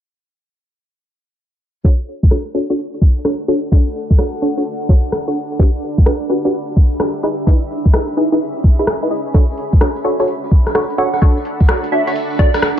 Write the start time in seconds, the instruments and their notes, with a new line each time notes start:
1.84 ambient pad D4, synth stab D4 F#4 A4 C#5, kick
1.89 ambient pad A4
2.08 ambient pad B5
2.23 ambient pad F#5, kick
2.31 synth stab D4 F#4 A4 C#5, cross-stick
2.54 synth stab D4 F#4 A4 C#5
2.70 synth stab D4 F#4 A4 C#5
3.01 kick
3.25 synth stab D4 F#4 A4 C#5, cross-stick
3.48 synth stab D4 F#4 A4 C#5
3.72 synth stab D4 F#4 A4 C#5, kick
4.10 kick
4.18 synth stab D4 F#4 A4 C#5, cross-stick
4.42 synth stab D4 F#4 A4 C#5
4.57 synth stab D4 F#4 A4 C#5
4.89 synth stab D4 F#4 A4 C#5, kick
5.12 cross-stick
5.28 synth stab D4 F#4 A4 C#5
5.59 synth stab D4 F#4 G4 B4, kick
5.98 ambient pad E5, kick
6.06 synth stab D4 F#4 G4 B4, cross-stick
6.29 synth stab D4 F#4 G4 B4
6.45 synth stab D4 F#4 G4 B4
6.76 kick
7.00 synth stab D4 F#4 G4 B4, cross-stick
7.23 ambient pad C#4, synth stab D#4 E4 G#4 B4
7.33 ambient pad G#4
7.47 synth stab D#4 E4 G#4 B4, kick
7.86 kick
7.93 synth stab D#4 E4 G#4 B4, cross-stick
8.17 synth stab D#4 E4 G#4 B4
8.32 synth stab D#4 E4 G#4 B4
8.64 kick
8.79 synth stab D#4 E4 G#4 B4
8.87 cross-stick
9.02 synth stab D#4 E4 G#4 B4
9.11 synth stab D#4 E4 G#4 D#5
9.34 synth stab D4 F#4 A4 C#5, ambient pad D4, kick, closed hi-hat, tambourine
9.49 ambient pad A4, tambourine
9.56 ambient pad F#5, closed hi-hat
9.73 kick, tambourine
9.81 synth stab D4 F#4 A4 C#5, cross-stick, tambourine
9.96 closed hi-hat, tambourine
10.04 synth stab D4 F#4 A4 C#5
10.20 synth stab D4 F#4 A4 C#5, closed hi-hat, tambourine
10.27 closed hi-hat, tambourine
10.44 tambourine
10.51 kick
10.67 cross-stick, closed hi-hat, tambourine
10.75 synth stab D4 F#4 A4 C#5, cross-stick, tambourine
10.90 closed hi-hat, tambourine
10.98 synth stab D4 F#4 A4 C#5, digital synth lead F#5
11.14 digital synth lead F#5, cross-stick, tambourine
11.22 synth stab D4 F#4 A4 C#5, kick, closed hi-hat, tambourine
11.37 tambourine
11.45 closed hi-hat
11.60 kick, tambourine
11.68 synth stab D4 F#4 A4 C#5, cross-stick, tambourine
11.83 closed hi-hat, tambourine
11.92 synth stab D4 F#4 A4 C#5, digital synth lead E5
12.07 synth stab D4 F#4 A4 C#5, digital synth lead E5, closed hi-hat, tambourine
12.16 closed hi-hat, tambourine
12.30 tambourine
12.39 synth stab D4 F#4 A4 C#5, digital synth lead D5, kick
12.54 cross-stick, closed hi-hat, tambourine
12.62 cross-stick, tambourine